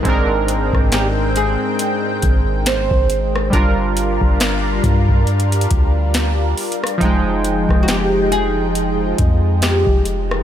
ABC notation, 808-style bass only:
X:1
M:4/4
L:1/16
Q:"Swing 16ths" 1/4=69
K:Gphr
V:1 name="808-style bass" clef=bass
A,,,3 A,,,4 z3 A,,,3 A,,,3 | G,,,3 G,,,3 G,,4 D,,4 z2 | F,,,3 F,,,6- F,,, F,,3 F,,,3 |]